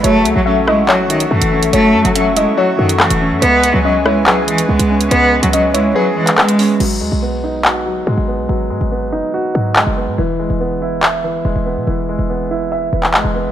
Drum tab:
CC |----------------|----------------|----------------|----------------|
HH |x-x-------xx-x-x|x--xx-x----x-x--|x-x-------xx-x-x|x--xx-x----x-xo-|
CP |--------x-------|------------x---|--------x-------|-----------xx---|
SD |------r---------|------------r---|------r---------|------------r---|

CC |x---------------|----------------|----------------|----------------|
HH |----------------|----------------|----------------|----------------|
CP |--------x-------|------------x---|--------x-------|-----------xx---|
SD |----------------|----------------|----------------|----------------|